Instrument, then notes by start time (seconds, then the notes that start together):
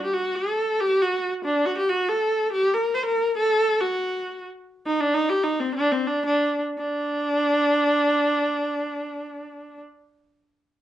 viola
0.04 G4
0.14 F#4
0.36 A4
0.80 G4
1.01 F#4
1.44 D4
1.66 F#4
1.78 G4
1.89 F#4
2.09 A4
2.52 G4
2.73 A#4
2.94 C5
3.05 A#4
3.37 A4
3.80 F#4
4.86 D#4
5.01 D4
5.14 D#4
5.30 G4
5.43 D#4
5.60 C4
5.75 D4
5.92 C4
6.07 D4
6.25 D4
6.78 D4